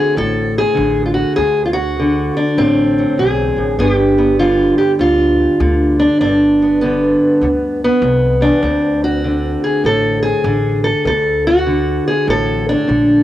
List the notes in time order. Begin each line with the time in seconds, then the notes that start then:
Already playing: D2 D3 C4 G#4
0.16 A1 A2 A4
0.58 G#4
0.75 A1 D3
1.06 F4
1.14 F#4
1.36 D2 G#4
1.66 F4
1.73 F#4
1.99 D3
2.37 D4
2.58 A1 A2 C4
2.98 F#3
3.18 B1 E2 G#4
3.56 A1 F#2
3.78 G1 G2 D3 B3 D4 G4
4.18 B3
4.39 D3 F4
4.78 G4
4.99 D2 D3 F4
5.60 D2 D3
6.00 D4
6.21 G1 G2 D4
6.62 B3
6.81 D3 B3
7.41 D2 D3
7.84 B3
8.02 C2 F2
8.41 E2 D4
8.63 D2 C4
9.04 F#4
9.24 D3
9.64 G#4
9.84 A1 A2 A4
10.23 G#4
10.44 A1 D3
10.84 A4
11.05 D2 A4
11.47 F#4
11.66 D3
12.08 G#4
12.27 A1 A2 A4
12.69 D4
12.87 A#1 D3